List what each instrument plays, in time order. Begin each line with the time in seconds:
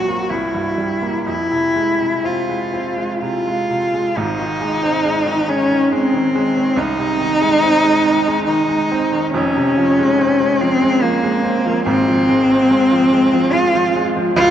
Already playing: grand piano A#1 A#2 F#3, cello F#4
0.08 grand piano A#3
0.29 grand piano C2, cello E4
0.55 grand piano G2
0.78 grand piano G3
1.02 grand piano A#3
1.26 grand piano F2, cello E4
1.51 grand piano C3
1.76 grand piano G#3
2.00 grand piano C3
2.24 grand piano C4, cello F4
2.49 grand piano G#3
2.74 grand piano C4
2.98 grand piano G#3
3.21 grand piano C3, cello F4
3.48 grand piano G#3
3.70 grand piano C3
3.94 grand piano G#3
4.16 grand piano G#1 G#2, cello D#4
4.40 grand piano D#3
4.61 grand piano G#3
4.83 grand piano C4
5.05 grand piano G#3
5.26 grand piano D#3
5.48 grand piano G#3, cello C#4
5.71 grand piano D#3
5.92 grand piano G#3, cello C4
6.14 grand piano D#3
6.35 grand piano G#3
6.56 grand piano D#3
6.77 grand piano C2, cello D#4
6.99 grand piano C3
7.21 grand piano D#3
7.41 grand piano G#3
7.63 grand piano C4
7.84 grand piano G#3
8.05 grand piano D#3
8.27 grand piano G#3
8.47 grand piano D#3, cello D#4
8.69 grand piano G#3
8.92 grand piano C4
9.12 grand piano D#3
9.33 grand piano F1 F2, cello C#4
9.57 grand piano C3
9.77 grand piano F3
9.99 grand piano G#3
10.19 grand piano C4
10.40 grand piano G#3
10.61 grand piano F3, cello C4
10.82 grand piano G#3
11.02 grand piano F3, cello A#3
11.23 grand piano G#3
11.44 grand piano C4
11.65 grand piano F3
11.86 grand piano G#1 G#2, cello C4
12.08 grand piano F3
12.29 grand piano G#3
12.50 grand piano C4
12.71 grand piano G#3
12.92 grand piano F3
13.12 grand piano G#3
13.34 grand piano F3
13.53 grand piano G#3, cello F4
13.75 grand piano F3
13.96 grand piano G#3
14.16 grand piano F3
14.36 grand piano C#2, cello F4